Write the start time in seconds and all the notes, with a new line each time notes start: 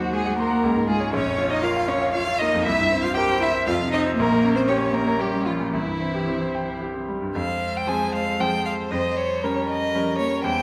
Already playing: D#2 D#3 F#3 F#4
0.01 C5
0.13 G#3 F#4 G#4
0.26 F#5
0.38 A#3 A#4 C6
0.51 F#5
0.64 C#2
0.76 G#2
0.87 G#3 F4 G#4
1.00 C#5
1.13 A#1 C#4 C#5
1.26 F2
1.38 F4
1.50 D#4 C#5 D#5
1.62 F4 A#4 F5
1.77 F5
1.88 C#4 C#5 C#6
2.02 F5
2.13 F4 C#5 F5
2.28 F4
2.38 A#3 D#4 D#5
2.54 F2
2.64 C2 E4 E5
2.79 G2
2.92 C4
3.01 F4 C5 F5
3.15 G4 A#4 G5
3.29 C5
3.40 E4 E5 C6
3.55 C5
3.67 F2 F4 F5
3.81 C3
3.92 C4 D#4 D#5
4.06 C5
4.17 A#1 A#3 A#4
4.32 A#2
4.44 C#4
4.55 C4 A#4 C5
4.67 C#4 G4 C#5
4.81 C#5
4.93 A#3 A#4 A#5
5.07 C#5
5.19 G3 G4 A#4
5.33 C#4
5.45 F3 G3 F4
5.60 A#2
5.72 C2 E3 E4
5.87 G2
6.01 C4
6.15 G4
6.28 C4
6.41 C5
6.55 G5
6.68 C5
6.81 G4
6.94 C4
7.08 G3
7.22 G2
7.35 F2 G#3 C5 F5
7.77 G5
7.87 F3 C4 G#4 G#5
8.15 F5
8.39 F3 C4 G#4 C5 G5
8.65 F5
8.91 F2 G3 C5 D#5
9.17 C#5
9.42 G3 C#4 A#4 C#5
9.70 D#5
9.93 F3 G3 C#4 A#4
10.19 A#3 C#5
10.43 E2 G3 C5 G5